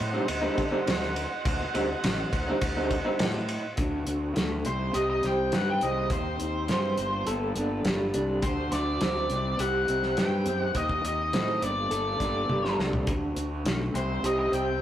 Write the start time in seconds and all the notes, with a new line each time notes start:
Already playing: C5 D#5 F#5
0.00 A2
0.13 D3 G3 C4 D#4
0.27 D2, muted clean electric guitar stroke, ride
0.42 D3 G3 C4 D#4
0.58 D3, kick, ride
0.71 D3 G3 C4 D#4
0.87 D2, snare, ride
1.00 muted clean electric guitar stroke, snare
1.16 ride
1.45 D2, kick, ride
1.60 muted clean electric guitar stroke
1.74 D2 D3 G3 C4 D#4, ride
1.89 muted clean electric guitar stroke
2.04 A1, snare, ride
2.33 D2, kick, ride
2.48 D3 G3 C4 D#4
2.62 D2, kick, ride
2.77 D3 G3 C4 D#4
2.91 kick, ride
3.05 D3 G3 C4 D#4
3.19 A2, snare, ride
3.34 muted clean electric guitar stroke
3.49 ride
3.77 D2 D3 C4 D4 F#4, kick, closed hi-hat
4.07 D2, closed hi-hat
4.36 D2 A3, snare, closed hi-hat
4.65 C2 C3 C4 D#4 G4 C5, closed hi-hat
4.93 C2 G4 D#5, closed hi-hat
5.10 D#5
5.23 C2 C4 G5, snare, closed hi-hat
5.52 G2 D#3 F#5, snare, closed hi-hat
5.70 G5
5.81 C2 C4 D#5, closed hi-hat
6.10 D#2 D#3 C4 C5, kick, closed hi-hat
6.40 D#2, closed hi-hat
6.68 G2 C4, snare, closed hi-hat
6.98 G1 G2 A#3 A4, closed hi-hat
7.27 G1 A4, closed hi-hat
7.56 G1 D4, closed hi-hat
7.85 G1 G3, snare, closed hi-hat
8.14 C2 D4, closed hi-hat
8.42 D2 D3 C4 D4 F#4 C5, kick, closed hi-hat
8.72 D2 D5, snare, closed hi-hat
9.01 D2 C4, snare, closed hi-hat
9.29 C2 C3 D#4 G4, closed hi-hat
9.59 C2 G4 F#5, closed hi-hat
9.88 C2 C4, closed hi-hat
10.03 snare
10.17 G2 D#3 G5, snare, closed hi-hat
10.46 F#2 C4, closed hi-hat
10.61 F#5
10.73 D#2 D#3 D#4 D#5, kick, closed hi-hat
10.89 kick
11.04 D#2 D#5, closed hi-hat
11.33 A2 C4, snare, closed hi-hat
11.61 G1 G2 A#3 G4 A4 D5, closed hi-hat
11.91 G1 A4, closed hi-hat
12.20 G1 D4, kick, snare, closed hi-hat
12.49 G1 G3, high tom
12.65 snare
12.79 C2 D4, snare
12.93 floor tom
13.07 D2 D3 C4 D4 F#4, kick, closed hi-hat
13.36 D2, closed hi-hat
13.65 B1 A3, snare, closed hi-hat
13.93 C2 C3 D#4 G4 C5, closed hi-hat
14.22 C2 G4 D#5, closed hi-hat
14.39 D#5
14.52 C2 C4 G5, closed hi-hat